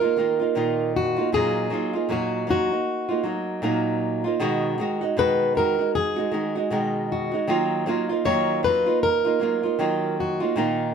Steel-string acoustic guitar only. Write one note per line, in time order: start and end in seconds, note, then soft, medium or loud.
0.00 0.96 A#4 medium
0.96 1.34 F#4 medium
1.34 2.06 G#4 medium
2.12 2.49 F#4 medium
2.51 3.99 F#4 medium
5.19 5.57 B4 medium
5.57 5.93 A#4 medium
5.95 7.14 G#4 medium
7.12 7.47 F#4 medium
8.26 8.64 C#5 medium
8.64 9.03 B4 medium
9.03 10.15 A#4 medium
10.20 10.55 F#4 medium